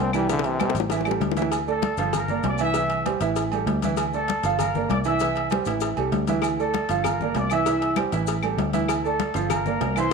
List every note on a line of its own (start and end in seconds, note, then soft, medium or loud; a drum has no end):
0.00 0.69 C2 medium
0.00 0.14 C4 medium
0.13 0.27 E3 medium
0.13 0.29 G3 medium
0.13 0.27 E4 medium
0.13 0.27 E5 medium
0.13 high conga soft
0.13 low agogo loud
0.13 claves medium
0.13 maracas medium
0.29 0.48 D3 loud
0.29 0.55 E3 medium
0.29 0.55 E4 medium
0.29 0.55 E5 medium
0.29 cowbell loud
0.29 high bongo medium
0.29 high conga soft
0.29 maracas medium
0.39 high bongo medium
0.43 0.60 C3 loud
0.43 cowbell medium
0.43 high conga soft
0.43 low agogo medium
0.43 maracas soft
0.59 0.75 C3 loud
0.59 0.86 G3 medium
0.59 0.86 G4 medium
0.59 0.86 C5 medium
0.59 cowbell medium
0.59 high conga loud
0.59 low timbale medium
0.59 low agogo loud
0.59 claves medium
0.59 maracas soft
0.70 high bongo medium
0.74 1.18 A1 loud
0.74 cowbell medium
0.74 high conga soft
0.74 maracas medium
0.80 low bongo loud
0.90 1.04 E3 loud
0.90 1.04 E4 medium
0.90 1.04 E5 medium
0.90 cowbell loud
0.90 low bongo medium
0.90 high conga soft
0.90 low agogo medium
0.90 maracas loud
1.01 low bongo medium
1.05 1.31 G3 medium
1.05 1.32 G4 medium
1.05 1.32 A4 medium
1.05 high conga soft
1.05 low agogo loud
1.05 claves medium
1.05 maracas soft
1.11 low bongo medium
1.20 1.92 D2 medium
1.20 cowbell medium
1.20 high conga medium
1.20 low timbale medium
1.20 maracas soft
1.31 low bongo loud
1.37 1.49 E3 loud
1.37 1.49 E4 medium
1.37 1.50 E5 medium
1.37 cowbell medium
1.37 maracas medium
1.42 low bongo medium
1.52 cowbell loud
1.52 high conga soft
1.52 low agogo loud
1.52 maracas medium
1.68 1.93 A3 medium
1.68 1.93 A4 medium
1.68 2.11 A4 medium
1.68 1.93 D5 medium
1.68 2.11 A5 medium
1.68 high conga soft
1.68 maracas soft
1.82 cowbell medium
1.82 high conga loud
1.82 low timbale medium
1.82 low agogo medium
1.82 maracas soft
1.97 2.41 G1 medium
1.97 2.24 F3 loud
1.97 2.24 F4 medium
1.97 2.24 F5 medium
1.97 cowbell medium
1.97 maracas medium
2.13 2.43 A#4 medium
2.13 2.43 A#5 medium
2.13 cowbell loud
2.13 high conga soft
2.13 low conga medium
2.13 low agogo loud
2.13 maracas loud
2.28 2.54 A#3 medium
2.28 2.55 A#4 medium
2.28 2.55 D5 medium
2.28 high conga soft
2.28 low conga medium
2.28 maracas soft
2.43 3.15 C2 loud
2.43 2.61 D5 medium
2.43 2.61 D6 medium
2.43 cowbell medium
2.43 high conga medium
2.43 low timbale medium
2.43 low agogo medium
2.43 maracas soft
2.58 2.73 E3 loud
2.58 2.73 E4 medium
2.58 2.73 E5 medium
2.58 low agogo loud
2.58 maracas medium
2.62 3.04 E5 loud
2.62 3.04 E6 medium
2.74 3.00 E3 medium
2.74 3.01 E4 medium
2.74 3.00 E5 medium
2.74 cowbell loud
2.74 high conga soft
2.74 maracas medium
2.90 cowbell medium
2.90 high conga soft
2.90 low agogo medium
2.90 maracas soft
3.06 3.18 G3 medium
3.06 3.19 G4 medium
3.06 3.19 C5 medium
3.06 cowbell medium
3.06 high conga medium
3.06 low timbale medium
3.06 low agogo loud
3.06 maracas soft
3.21 3.64 A1 loud
3.21 3.47 E3 medium
3.21 3.47 E4 medium
3.21 3.47 E5 medium
3.21 cowbell medium
3.21 high conga soft
3.21 maracas medium
3.36 cowbell loud
3.36 high conga soft
3.36 low agogo medium
3.36 maracas medium
3.52 3.77 G3 medium
3.52 3.78 G4 medium
3.52 3.78 A4 medium
3.52 high conga soft
3.52 low agogo loud
3.52 maracas soft
3.66 4.38 D2 loud
3.66 cowbell medium
3.66 high conga medium
3.66 low timbale loud
3.66 maracas soft
3.82 4.08 E3 loud
3.82 4.09 E4 medium
3.82 4.09 E5 medium
3.82 cowbell medium
3.82 high conga medium
3.82 maracas medium
3.97 cowbell loud
3.97 high conga soft
3.97 low agogo loud
3.97 maracas medium
4.13 4.39 A3 medium
4.13 4.56 A4 loud
4.13 4.39 A4 medium
4.13 4.39 D5 medium
4.13 4.56 A5 medium
4.13 high conga soft
4.13 maracas soft
4.28 cowbell medium
4.28 high conga loud
4.28 low timbale medium
4.28 low agogo medium
4.28 maracas soft
4.43 4.86 G1 medium
4.43 4.69 F3 medium
4.43 4.70 F4 medium
4.43 4.70 F5 medium
4.43 cowbell medium
4.43 maracas medium
4.59 4.88 A#4 medium
4.59 4.88 A#5 medium
4.59 cowbell medium
4.59 high conga soft
4.59 low conga medium
4.59 low agogo loud
4.59 maracas loud
4.75 5.00 A#3 medium
4.75 5.01 A#4 medium
4.75 5.01 D5 medium
4.75 high conga soft
4.75 low conga medium
4.75 maracas soft
4.89 5.61 C2 loud
4.89 4.98 D5 medium
4.89 4.97 D6 medium
4.89 cowbell medium
4.89 high conga medium
4.89 low timbale medium
4.89 low agogo medium
4.89 maracas soft
5.04 5.18 E3 medium
5.04 5.18 E4 medium
5.04 5.18 E5 medium
5.04 5.49 E5 loud
5.04 5.49 E6 medium
5.04 low agogo loud
5.04 maracas medium
5.20 5.46 E3 medium
5.20 5.46 E4 medium
5.20 5.46 E5 medium
5.20 cowbell loud
5.20 high conga soft
5.20 maracas loud
5.35 cowbell medium
5.35 high conga soft
5.35 low agogo medium
5.35 maracas soft
5.50 5.64 G3 medium
5.50 5.64 G4 medium
5.50 5.65 C5 medium
5.50 cowbell medium
5.50 high conga loud
5.50 low timbale medium
5.50 low agogo loud
5.50 maracas soft
5.65 5.95 A1 medium
5.65 5.92 E3 medium
5.65 5.92 E4 medium
5.65 5.92 E5 medium
5.65 cowbell medium
5.65 maracas medium
5.81 cowbell loud
5.81 high conga soft
5.81 low agogo medium
5.81 maracas medium
5.97 6.12 C2 medium
5.97 6.23 G3 medium
5.97 6.23 G4 medium
5.97 6.23 A4 medium
5.97 high conga soft
5.97 low agogo loud
5.97 maracas soft
6.12 6.84 D2 loud
6.12 cowbell medium
6.12 high conga medium
6.12 low timbale medium
6.12 maracas soft
6.27 6.53 E3 loud
6.27 6.54 E4 medium
6.27 6.54 E5 medium
6.27 cowbell medium
6.27 high conga medium
6.27 maracas medium
6.42 cowbell loud
6.42 low agogo loud
6.42 claves medium
6.42 maracas loud
6.59 6.84 A3 medium
6.59 7.02 A4 medium
6.59 6.85 A4 medium
6.59 6.85 D5 medium
6.59 7.02 A5 medium
6.59 high conga soft
6.59 maracas soft
6.74 cowbell medium
6.74 high conga loud
6.74 low timbale medium
6.74 low agogo medium
6.74 maracas soft
6.89 7.32 G1 medium
6.89 7.15 F3 medium
6.89 7.15 F4 medium
6.89 7.15 F5 medium
6.89 cowbell medium
6.89 maracas medium
7.04 7.33 A#4 medium
7.04 7.33 A#5 medium
7.04 cowbell loud
7.04 high conga soft
7.04 low conga medium
7.04 low agogo loud
7.04 claves medium
7.04 maracas medium
7.21 7.46 A#3 medium
7.21 7.46 A#4 medium
7.21 7.47 D5 medium
7.21 high conga soft
7.21 low conga medium
7.21 maracas soft
7.35 8.06 C2 medium
7.35 7.52 D5 medium
7.35 7.51 D6 medium
7.35 cowbell medium
7.35 high conga medium
7.35 low timbale medium
7.35 low agogo medium
7.35 maracas soft
7.50 7.64 E3 medium
7.50 7.64 E4 medium
7.50 7.97 E5 loud
7.50 7.64 E5 loud
7.50 7.97 E6 medium
7.50 high conga soft
7.50 low agogo loud
7.50 claves medium
7.50 maracas medium
7.66 7.92 E3 medium
7.66 7.92 E4 medium
7.66 7.92 E5 medium
7.66 cowbell loud
7.66 high conga soft
7.66 maracas medium
7.82 cowbell medium
7.82 high conga soft
7.82 low agogo medium
7.82 maracas soft
7.96 8.09 G3 medium
7.96 8.10 G4 medium
7.96 8.10 C5 medium
7.96 cowbell medium
7.96 high conga medium
7.96 low timbale medium
7.96 low agogo loud
7.96 claves medium
7.96 maracas soft
8.12 8.55 A1 loud
8.12 8.38 E3 medium
8.12 8.38 E4 medium
8.12 8.38 E5 medium
8.12 cowbell medium
8.12 high conga soft
8.12 maracas medium
8.27 cowbell loud
8.27 high conga soft
8.27 low agogo medium
8.27 maracas loud
8.43 8.68 G3 medium
8.43 8.69 G4 medium
8.43 8.69 A4 medium
8.43 high conga soft
8.43 low agogo loud
8.43 claves medium
8.43 maracas soft
8.57 9.29 D2 medium
8.57 cowbell medium
8.57 high conga medium
8.57 low timbale medium
8.57 maracas soft
8.73 8.99 E3 medium
8.73 8.99 E4 loud
8.73 8.99 E5 loud
8.73 cowbell medium
8.73 high conga medium
8.73 maracas medium
8.88 cowbell loud
8.88 high conga soft
8.88 low agogo loud
8.88 claves medium
8.88 maracas loud
9.04 9.30 A3 medium
9.04 9.47 A4 medium
9.04 9.30 A4 medium
9.04 9.30 D5 medium
9.04 9.47 A5 medium
9.04 high conga soft
9.04 maracas soft
9.20 cowbell medium
9.20 high conga loud
9.20 low timbale medium
9.20 low agogo medium
9.20 maracas soft
9.34 9.77 G1 loud
9.34 9.60 F3 loud
9.34 9.60 F4 medium
9.34 9.60 F5 medium
9.34 cowbell medium
9.34 maracas medium
9.50 9.97 A#4 medium
9.50 9.96 A#5 medium
9.50 cowbell loud
9.50 high conga soft
9.50 low conga medium
9.50 low agogo loud
9.50 claves medium
9.50 maracas medium
9.66 9.91 A#3 medium
9.66 9.91 A#4 medium
9.66 9.92 D5 medium
9.66 high conga soft
9.66 low conga medium
9.66 maracas soft
9.81 10.13 C2 loud
9.81 cowbell medium
9.81 high conga medium
9.81 low timbale medium
9.81 low agogo medium
9.81 maracas soft
9.96 10.09 E3 medium
9.96 10.10 E4 medium
9.96 10.13 C5 loud
9.96 10.10 E5 medium
9.96 10.13 C6 medium
9.96 high conga soft
9.96 low agogo loud
9.96 claves medium
9.96 maracas medium